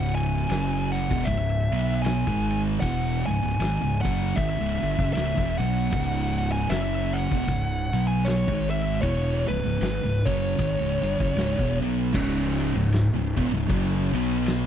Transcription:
Already playing: fingered electric bass C#1, distorted electric guitar C#2 G#2 C#3, lead electric guitar F#5
0.15 lead electric guitar G#5, ride
0.36 snare
0.49 fingered electric bass F#1, distorted electric guitar F#2 C#3 F#3, snare, ride
0.92 lead electric guitar F#5, ride
1.11 fingered electric bass E1, distorted electric guitar E2 B2, kick
1.25 fingered electric bass C#1, distorted electric guitar C#2 G#2, lead electric guitar E5, kick, ride
1.71 fingered electric bass B1, distorted electric guitar B2 F#3 B3, ride
2.02 lead electric guitar G#5, ride
2.06 snare
2.27 fingered electric bass G#1, distorted electric guitar G#2 D#3 G#3, kick
2.50 ride
2.80 fingered electric bass E1, distorted electric guitar E2 B2 E3, lead electric guitar F#5, kick, ride
3.26 fingered electric bass C#1, distorted electric guitar C#2 G#2, lead electric guitar G#5, ride
3.43 fingered electric bass C#1, distorted electric guitar C#2 G#2, snare
3.59 fingered electric bass G#1, distorted electric guitar G#2 D#3, snare, ride
3.82 fingered electric bass C#1, distorted electric guitar C#2 G#2
4.01 fingered electric bass F#1, distorted electric guitar F#2 C#3 F#3, lead electric guitar F#5, kick, ride
4.36 fingered electric bass G#1, distorted electric guitar G#2 D#3, lead electric guitar E5, kick, ride
4.60 fingered electric bass C#1, distorted electric guitar C#2 G#2
4.82 fingered electric bass G1, distorted electric guitar G2 D3, ride
4.98 fingered electric bass F#1, distorted electric guitar F#2 C#3, kick
5.13 fingered electric bass C#1, distorted electric guitar C#2 G#2, lead electric guitar E5, snare, ride
5.37 fingered electric bass E1, distorted electric guitar E2 B2, kick
5.58 fingered electric bass B1, distorted electric guitar B2 F#3 B3, lead electric guitar F#5, ride
5.90 fingered electric bass C#1, distorted electric guitar C#2 G#2 C#3, kick, ride
6.38 ride
6.52 lead electric guitar G#5
6.56 snare
6.69 fingered electric bass F#1, distorted electric guitar F#2 C#3 F#3, lead electric guitar E5, snare, ride
7.13 lead electric guitar F#5, ride
7.31 fingered electric bass E1, distorted electric guitar E2 B2, kick
7.48 fingered electric bass C#1, distorted electric guitar C#2 G#2, kick, ride
7.92 fingered electric bass B1, distorted electric guitar B2 F#3 B3, ride
8.07 lead electric guitar G#5
8.25 lead electric guitar C#5, snare, ride
8.48 fingered electric bass G#1, distorted electric guitar G#2 D#3 G#3, kick
8.70 lead electric guitar E5, ride
9.02 fingered electric bass E1, distorted electric guitar E2 B2 E3, lead electric guitar C#5, kick, ride
9.48 fingered electric bass C#1, distorted electric guitar C#2 G#2, lead electric guitar B4, ride
9.65 fingered electric bass C#1, distorted electric guitar C#2 G#2
9.81 fingered electric bass G#1, distorted electric guitar G#2 D#3, snare, ride
10.03 fingered electric bass C#1, distorted electric guitar C#2 G#2
10.26 fingered electric bass F#1, distorted electric guitar F#2 C#3 F#3, lead electric guitar C#5, kick, ride
10.58 fingered electric bass G#1, distorted electric guitar G#2 D#3, kick, ride
10.80 fingered electric bass C#1, distorted electric guitar C#2 G#2
11.02 fingered electric bass G1, distorted electric guitar G2 D3, ride
11.19 fingered electric bass F#1, distorted electric guitar F#2 C#3, kick
11.34 fingered electric bass C#1, distorted electric guitar C#2 G#2, ride
11.38 snare
11.58 fingered electric bass E1, distorted electric guitar E2 B2, kick
11.80 fingered electric bass B1, distorted electric guitar B2 F#3 B3, ride
12.14 fingered electric bass C#1, distorted electric guitar C#2 G#2 C#3, kick, crash
12.60 ride
12.74 fingered electric bass C#1, distorted electric guitar C#2 G#2
12.92 snare, ride
13.13 fingered electric bass C#1, distorted electric guitar C#2 G#2
13.37 fingered electric bass E1, distorted electric guitar E2 B2, kick, ride
13.51 fingered electric bass C#1, distorted electric guitar C#2 G#2
13.69 fingered electric bass F#1, distorted electric guitar F#2 C#3 F#3, kick, ride
14.13 fingered electric bass B1, distorted electric guitar B2 F#3 B3, ride
14.46 snare, ride

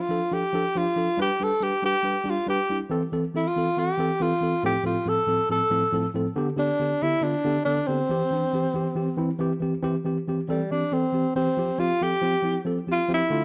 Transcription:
0.01 tenor saxophone F4
0.09 tine electric piano F3 D4 A4
0.31 tine electric piano F3 D4 A4, tenor saxophone G4
0.53 tine electric piano F3 D4 A4
0.75 tine electric piano F3 D4 G4, tenor saxophone F4
0.96 tine electric piano F3 D4 A4
1.17 tine electric piano G3 D4 B4, tenor saxophone G4
1.40 tine electric piano G3 D4 B4, tenor saxophone A4
1.60 tine electric piano G3 D4 B4, tenor saxophone G4
1.82 tine electric piano G3 D4 B4, tenor saxophone G4
2.03 tine electric piano G3 D4 B4
2.24 tine electric piano G3 D4 G4
2.30 tenor saxophone F4
2.47 tine electric piano G3 D4 B4, tenor saxophone G4
2.69 tine electric piano G3 D4 E4
2.90 tine electric piano E3 C4 A4
3.12 tine electric piano E3 C4 A4
3.34 tine electric piano E3 C4 A4, tenor saxophone E4
3.48 tenor saxophone F4
3.56 tine electric piano E3 C4 A4
3.77 tine electric piano E3 C4 A4, tenor saxophone G4
3.98 tine electric piano E3 C4 A4
4.20 tine electric piano E3 C4 A4, tenor saxophone F4
4.41 tine electric piano E3 C4 A4
4.63 tine electric piano A2 F3 C4 A4, tenor saxophone G4
4.84 tine electric piano A2 F3 C4 A4, tenor saxophone F4
5.05 tine electric piano A2 F3 C4 A4, tenor saxophone A4
5.27 tine electric piano A2 F3 C4 A4
5.49 tine electric piano A2 F3 C4 A4, tenor saxophone A4
5.70 tine electric piano A2 F3 C4 A4
5.92 tine electric piano A2 F3 C4 A4
6.14 tine electric piano A2 F3 C4 A4
6.36 tine electric piano D3 B3 G4
6.56 tine electric piano D3 B3 G4, tenor saxophone D4
6.80 tine electric piano D3 B3 G4
7.02 tine electric piano D3 B3 G4, tenor saxophone E4
7.21 tine electric piano D3 B3 F4, tenor saxophone D4
7.44 tine electric piano D3 B3 G4
7.65 tine electric piano D3 B3 A4, tenor saxophone D4
7.87 tine electric piano D3 B3 G4, tenor saxophone C4
8.09 tine electric piano E3 C4 G4
8.31 tine electric piano E3 C4 D4
8.53 tine electric piano E3 C4 G4
8.74 tine electric piano E3 C4 G4
8.95 tine electric piano E3 C4 G4
9.17 tine electric piano E3 C4 E4
9.39 tine electric piano E3 C4 G4
9.60 tine electric piano E3 C4 G4
9.83 tine electric piano E3 C4 G4
10.05 tine electric piano E3 C4 G4
10.28 tine electric piano E3 C4 G4
10.48 tine electric piano E3 C4 A4, tenor saxophone G3
10.71 tine electric piano E3 C4 G4, tenor saxophone D4
10.91 tine electric piano E3 C4 A4, tenor saxophone C4
11.13 tine electric piano E3 C4 G4
11.35 tine electric piano E3 C4 G4, tenor saxophone C4
11.57 tine electric piano F3 C4 G4
11.78 tine electric piano F3 C4 G4, tenor saxophone F4
12.01 tine electric piano F3 C4 A4, tenor saxophone G4
12.22 tine electric piano F3 C4 G4
12.42 tine electric piano F3 C4 E4
12.65 tine electric piano F3 C4 A4
12.87 tine electric piano F3 C4 G4
12.92 tenor saxophone F4
13.09 tine electric piano F3 C4 G4
13.14 tenor saxophone E4
13.30 tine electric piano D3 A3 F4

